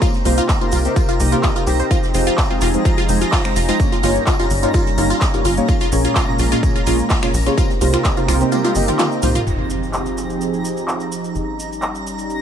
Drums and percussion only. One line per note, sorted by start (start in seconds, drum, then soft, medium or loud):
0.02 kick loud
0.02 closed hi-hat medium
0.02 tambourine loud
0.02 cabasa medium
0.14 snare soft
0.14 cabasa soft
0.25 open hi-hat loud
0.25 tambourine medium
0.25 cabasa medium
0.38 closed hi-hat medium
0.38 cabasa soft
0.49 kick loud
0.49 snare loud
0.49 clap loud
0.49 closed hi-hat medium
0.49 tambourine loud
0.49 cabasa soft
0.72 open hi-hat loud
0.72 tambourine medium
0.72 cabasa loud
0.85 closed hi-hat medium
0.85 cabasa soft
0.96 kick loud
0.96 closed hi-hat medium
0.96 tambourine medium
0.96 cabasa medium
1.09 closed hi-hat soft
1.09 cabasa soft
1.20 open hi-hat loud
1.20 tambourine medium
1.20 cabasa loud
1.32 snare soft
1.32 closed hi-hat medium
1.32 cabasa soft
1.43 kick loud
1.43 snare loud
1.43 clap loud
1.43 closed hi-hat medium
1.43 tambourine medium
1.43 cabasa soft
1.56 cabasa soft
1.66 open hi-hat medium
1.66 tambourine medium
1.66 cabasa medium
1.80 closed hi-hat medium
1.80 cabasa soft
1.91 kick loud
1.91 closed hi-hat medium
1.91 tambourine medium
1.91 cabasa medium
2.03 snare soft
2.03 cabasa soft
2.14 open hi-hat loud
2.14 tambourine medium
2.14 cabasa medium
2.27 closed hi-hat medium
2.27 cabasa soft
2.38 kick loud
2.38 snare loud
2.38 clap loud
2.38 closed hi-hat medium
2.38 tambourine loud
2.38 cabasa soft
2.61 clap soft
2.61 open hi-hat medium
2.61 tambourine medium
2.61 cabasa medium
2.74 closed hi-hat medium
2.74 cabasa soft
2.85 kick loud
2.85 closed hi-hat medium
2.85 tambourine medium
2.85 cabasa medium
2.97 cabasa soft
3.09 open hi-hat loud
3.09 tambourine medium
3.09 cabasa medium
3.21 closed hi-hat medium
3.21 cabasa soft
3.32 kick loud
3.32 snare loud
3.32 clap loud
3.32 closed hi-hat soft
3.32 open hi-hat medium
3.32 cabasa medium
3.45 finger snap medium
3.45 cabasa soft
3.56 open hi-hat medium
3.56 tambourine medium
3.56 cabasa loud
3.68 snare medium
3.68 closed hi-hat medium
3.68 cabasa soft
3.80 kick loud
3.80 closed hi-hat medium
3.80 tambourine medium
3.80 cabasa medium
3.92 snare soft
3.92 cabasa soft
4.03 open hi-hat loud
4.03 tambourine medium
4.03 cabasa medium
4.16 closed hi-hat medium
4.16 cabasa soft
4.27 kick loud
4.27 snare loud
4.27 clap loud
4.27 closed hi-hat medium
4.27 tambourine medium
4.27 cabasa medium
4.50 open hi-hat medium
4.50 tambourine medium
4.50 cabasa medium
4.63 closed hi-hat medium
4.63 cabasa soft
4.74 kick loud
4.74 closed hi-hat medium
4.74 tambourine medium
4.74 cabasa medium
4.87 closed hi-hat soft
4.87 cabasa soft
4.98 open hi-hat loud
4.98 tambourine medium
4.98 cabasa medium
5.10 snare soft
5.10 closed hi-hat medium
5.10 cabasa soft
5.21 kick loud
5.21 snare loud
5.21 clap loud
5.21 closed hi-hat soft
5.21 tambourine loud
5.21 cabasa medium
5.34 cabasa soft
5.44 open hi-hat medium
5.44 tambourine medium
5.44 cabasa medium
5.57 closed hi-hat medium
5.57 cabasa soft
5.68 kick loud
5.68 closed hi-hat medium
5.68 tambourine medium
5.68 cabasa soft
5.80 snare soft
5.80 cabasa soft
5.92 open hi-hat loud
5.92 tambourine medium
5.92 cabasa medium
6.04 closed hi-hat medium
6.04 cabasa soft
6.15 kick loud
6.15 snare loud
6.15 clap loud
6.15 closed hi-hat medium
6.15 tambourine medium
6.15 cabasa medium
6.39 open hi-hat medium
6.39 tambourine medium
6.39 cabasa medium
6.52 closed hi-hat medium
6.52 cabasa soft
6.63 kick loud
6.63 closed hi-hat medium
6.63 tambourine medium
6.63 cabasa soft
6.76 cabasa soft
6.86 open hi-hat loud
6.86 tambourine medium
6.86 cabasa medium
6.99 closed hi-hat medium
6.99 cabasa soft
7.09 kick loud
7.09 snare loud
7.09 clap loud
7.09 closed hi-hat medium
7.09 open hi-hat medium
7.09 cabasa soft
7.23 finger snap medium
7.23 cabasa soft
7.34 open hi-hat medium
7.34 tambourine medium
7.34 cabasa loud
7.46 snare soft
7.46 closed hi-hat medium
7.46 cabasa soft
7.58 kick loud
7.58 closed hi-hat medium
7.58 tambourine loud
7.58 cabasa medium
7.70 snare soft
7.70 cabasa soft
7.81 open hi-hat loud
7.81 tambourine medium
7.81 cabasa medium
7.92 finger snap medium
7.92 closed hi-hat medium
7.92 cabasa soft
8.04 kick loud
8.04 snare loud
8.04 clap loud
8.04 closed hi-hat medium
8.04 tambourine medium
8.04 cabasa medium
8.17 cabasa soft
8.28 finger snap medium
8.28 clap soft
8.28 open hi-hat medium
8.28 tambourine medium
8.28 cabasa medium
8.41 closed hi-hat medium
8.41 cabasa soft
8.52 closed hi-hat medium
8.52 high tom medium
8.52 tambourine medium
8.52 cabasa soft
8.64 clap soft
8.64 closed hi-hat soft
8.64 high tom medium
8.64 cabasa soft
8.75 open hi-hat loud
8.75 tambourine medium
8.75 cabasa medium
8.88 snare soft
8.88 closed hi-hat medium
8.88 mid tom medium
8.88 cabasa soft
8.99 snare loud
8.99 clap loud
8.99 closed hi-hat medium
8.99 mid tom medium
8.99 tambourine medium
8.99 cabasa medium
9.12 cabasa soft
9.22 mid tom loud
9.22 open hi-hat medium
9.22 tambourine medium
9.22 cabasa loud
9.35 closed hi-hat medium
9.35 mid tom medium
9.35 cabasa soft
9.47 crash medium
9.47 cabasa soft
9.70 cabasa medium
9.83 closed hi-hat medium
9.83 cabasa soft
9.93 clap loud
9.93 cabasa soft
10.06 cabasa soft
10.17 clap soft
10.17 cabasa medium
10.30 closed hi-hat medium
10.30 cabasa soft
10.41 closed hi-hat soft
10.41 cabasa soft
10.54 cabasa soft
10.65 cabasa medium
10.77 closed hi-hat medium
10.77 cabasa soft
10.88 clap loud
10.88 closed hi-hat soft
10.88 cabasa soft
11.00 cabasa soft
11.12 cabasa medium
11.24 closed hi-hat medium
11.24 cabasa soft
11.35 closed hi-hat soft
11.35 cabasa soft
11.59 cabasa medium
11.71 closed hi-hat medium
11.71 cabasa soft
11.82 clap loud
11.82 closed hi-hat soft
11.82 cabasa soft
11.95 cabasa soft
12.07 cabasa medium
12.19 closed hi-hat medium
12.19 cabasa soft
12.30 closed hi-hat soft
12.30 cabasa soft